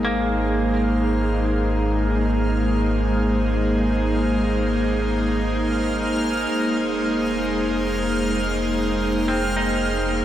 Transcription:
0, 0, Header, 1, 6, 480
1, 0, Start_track
1, 0, Key_signature, -4, "major"
1, 0, Tempo, 500000
1, 9839, End_track
2, 0, Start_track
2, 0, Title_t, "Synth texture"
2, 0, Program_c, 0, 99
2, 0, Note_on_c, 0, 89, 77
2, 9839, Note_off_c, 0, 89, 0
2, 9839, End_track
3, 0, Start_track
3, 0, Title_t, "Analog synth pad"
3, 0, Program_c, 1, 89
3, 0, Note_on_c, 1, 56, 63
3, 0, Note_on_c, 1, 58, 85
3, 0, Note_on_c, 1, 63, 72
3, 0, Note_on_c, 1, 68, 86
3, 0, Note_on_c, 1, 72, 73
3, 9839, Note_off_c, 1, 56, 0
3, 9839, Note_off_c, 1, 58, 0
3, 9839, Note_off_c, 1, 63, 0
3, 9839, Note_off_c, 1, 68, 0
3, 9839, Note_off_c, 1, 72, 0
3, 9839, End_track
4, 0, Start_track
4, 0, Title_t, "Clean electric guitar"
4, 0, Program_c, 2, 27
4, 44, Note_on_c, 2, 58, 55
4, 3542, Note_off_c, 2, 58, 0
4, 8910, Note_on_c, 2, 60, 47
4, 9183, Note_on_c, 2, 63, 45
4, 9839, Note_off_c, 2, 60, 0
4, 9839, Note_off_c, 2, 63, 0
4, 9839, End_track
5, 0, Start_track
5, 0, Title_t, "Synth drone"
5, 0, Program_c, 3, 95
5, 0, Note_on_c, 3, 56, 83
5, 0, Note_on_c, 3, 63, 79
5, 9839, Note_off_c, 3, 56, 0
5, 9839, Note_off_c, 3, 63, 0
5, 9839, End_track
6, 0, Start_track
6, 0, Title_t, "Sub bass"
6, 0, Program_c, 4, 38
6, 0, Note_on_c, 4, 32, 83
6, 6199, Note_off_c, 4, 32, 0
6, 6244, Note_on_c, 4, 29, 83
6, 9839, Note_off_c, 4, 29, 0
6, 9839, End_track
0, 0, End_of_file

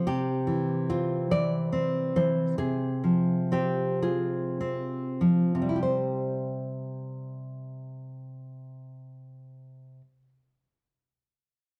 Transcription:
0, 0, Header, 1, 2, 480
1, 0, Start_track
1, 0, Key_signature, 0, "major"
1, 0, Tempo, 833333
1, 41, Time_signature, 6, 3, 24, 8
1, 1485, Tempo, 927357
1, 1965, Tempo, 1081081
1, 2445, Tempo, 1221996
1, 2925, Tempo, 1176471
1, 5367, End_track
2, 0, Start_track
2, 0, Title_t, "Nylon-string guitar"
2, 0, Program_c, 0, 24
2, 39, Note_on_c, 0, 67, 64
2, 42, Note_on_c, 0, 48, 46
2, 271, Note_on_c, 0, 52, 35
2, 492, Note_off_c, 0, 67, 0
2, 516, Note_on_c, 0, 60, 44
2, 517, Note_on_c, 0, 65, 61
2, 748, Note_off_c, 0, 65, 0
2, 750, Note_off_c, 0, 52, 0
2, 756, Note_on_c, 0, 52, 41
2, 757, Note_on_c, 0, 74, 73
2, 987, Note_off_c, 0, 60, 0
2, 994, Note_on_c, 0, 60, 43
2, 1216, Note_off_c, 0, 74, 0
2, 1238, Note_off_c, 0, 52, 0
2, 1244, Note_on_c, 0, 52, 42
2, 1246, Note_on_c, 0, 72, 66
2, 1461, Note_off_c, 0, 48, 0
2, 1478, Note_off_c, 0, 72, 0
2, 1484, Note_off_c, 0, 52, 0
2, 1484, Note_off_c, 0, 60, 0
2, 1486, Note_on_c, 0, 48, 46
2, 1487, Note_on_c, 0, 68, 61
2, 1723, Note_on_c, 0, 53, 38
2, 1946, Note_off_c, 0, 68, 0
2, 1971, Note_on_c, 0, 60, 42
2, 1974, Note_on_c, 0, 67, 61
2, 2189, Note_off_c, 0, 67, 0
2, 2196, Note_on_c, 0, 68, 55
2, 2198, Note_on_c, 0, 65, 38
2, 2446, Note_off_c, 0, 53, 0
2, 2448, Note_off_c, 0, 60, 0
2, 2452, Note_on_c, 0, 60, 36
2, 2689, Note_on_c, 0, 53, 35
2, 2818, Note_off_c, 0, 48, 0
2, 2822, Note_on_c, 0, 48, 42
2, 2848, Note_off_c, 0, 65, 0
2, 2849, Note_on_c, 0, 55, 34
2, 2878, Note_on_c, 0, 64, 32
2, 2904, Note_off_c, 0, 68, 0
2, 2905, Note_on_c, 0, 67, 34
2, 2927, Note_off_c, 0, 53, 0
2, 2928, Note_off_c, 0, 60, 0
2, 2930, Note_off_c, 0, 64, 0
2, 2932, Note_on_c, 0, 72, 38
2, 4639, Note_off_c, 0, 48, 0
2, 4666, Note_off_c, 0, 55, 0
2, 4725, Note_off_c, 0, 67, 0
2, 4752, Note_off_c, 0, 72, 0
2, 5367, End_track
0, 0, End_of_file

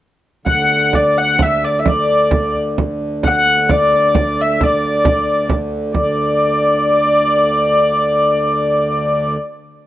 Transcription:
0, 0, Header, 1, 4, 480
1, 0, Start_track
1, 0, Key_signature, 2, "major"
1, 0, Tempo, 462606
1, 485, Time_signature, 6, 3, 24, 8
1, 3362, Tempo, 453172
1, 5762, Tempo, 440529
1, 8162, Tempo, 428878
1, 10580, End_track
2, 0, Start_track
2, 0, Title_t, "Hurdy-gurdy"
2, 0, Program_c, 0, 110
2, 482, Note_on_c, 0, 78, 90
2, 985, Note_off_c, 0, 78, 0
2, 985, Note_on_c, 0, 74, 79
2, 1224, Note_off_c, 0, 74, 0
2, 1224, Note_on_c, 0, 78, 87
2, 1479, Note_off_c, 0, 78, 0
2, 1479, Note_on_c, 0, 76, 83
2, 1707, Note_off_c, 0, 76, 0
2, 1707, Note_on_c, 0, 74, 69
2, 1861, Note_on_c, 0, 76, 48
2, 1866, Note_off_c, 0, 74, 0
2, 1948, Note_off_c, 0, 76, 0
2, 1948, Note_on_c, 0, 74, 78
2, 2657, Note_off_c, 0, 74, 0
2, 3367, Note_on_c, 0, 78, 104
2, 3857, Note_off_c, 0, 78, 0
2, 3857, Note_on_c, 0, 74, 85
2, 4108, Note_off_c, 0, 74, 0
2, 4108, Note_on_c, 0, 74, 88
2, 4603, Note_off_c, 0, 74, 0
2, 4603, Note_on_c, 0, 76, 80
2, 4837, Note_off_c, 0, 76, 0
2, 4837, Note_on_c, 0, 74, 78
2, 5734, Note_off_c, 0, 74, 0
2, 6246, Note_on_c, 0, 74, 87
2, 9976, Note_off_c, 0, 74, 0
2, 10580, End_track
3, 0, Start_track
3, 0, Title_t, "Harmonium"
3, 0, Program_c, 1, 20
3, 472, Note_on_c, 1, 38, 59
3, 6222, Note_off_c, 1, 38, 0
3, 6238, Note_on_c, 1, 38, 58
3, 10020, Note_off_c, 1, 38, 0
3, 10580, End_track
4, 0, Start_track
4, 0, Title_t, "Frame drum"
4, 480, Note_on_c, 9, 64, 66
4, 584, Note_off_c, 9, 64, 0
4, 966, Note_on_c, 9, 64, 75
4, 1070, Note_off_c, 9, 64, 0
4, 1205, Note_on_c, 9, 64, 23
4, 1309, Note_off_c, 9, 64, 0
4, 1442, Note_on_c, 9, 64, 83
4, 1546, Note_off_c, 9, 64, 0
4, 1683, Note_on_c, 9, 64, 25
4, 1787, Note_off_c, 9, 64, 0
4, 1925, Note_on_c, 9, 64, 78
4, 2029, Note_off_c, 9, 64, 0
4, 2398, Note_on_c, 9, 64, 84
4, 2501, Note_off_c, 9, 64, 0
4, 2643, Note_on_c, 9, 64, 24
4, 2746, Note_off_c, 9, 64, 0
4, 2885, Note_on_c, 9, 64, 78
4, 2989, Note_off_c, 9, 64, 0
4, 3119, Note_on_c, 9, 64, 24
4, 3222, Note_off_c, 9, 64, 0
4, 3355, Note_on_c, 9, 64, 73
4, 3461, Note_off_c, 9, 64, 0
4, 3841, Note_on_c, 9, 64, 79
4, 3947, Note_off_c, 9, 64, 0
4, 4088, Note_on_c, 9, 64, 25
4, 4194, Note_off_c, 9, 64, 0
4, 4323, Note_on_c, 9, 64, 87
4, 4429, Note_off_c, 9, 64, 0
4, 4565, Note_on_c, 9, 64, 26
4, 4671, Note_off_c, 9, 64, 0
4, 4810, Note_on_c, 9, 64, 78
4, 4916, Note_off_c, 9, 64, 0
4, 5053, Note_on_c, 9, 64, 25
4, 5159, Note_off_c, 9, 64, 0
4, 5279, Note_on_c, 9, 64, 87
4, 5385, Note_off_c, 9, 64, 0
4, 5517, Note_on_c, 9, 64, 26
4, 5623, Note_off_c, 9, 64, 0
4, 5750, Note_on_c, 9, 64, 83
4, 5859, Note_off_c, 9, 64, 0
4, 6239, Note_on_c, 9, 64, 71
4, 6348, Note_off_c, 9, 64, 0
4, 10580, End_track
0, 0, End_of_file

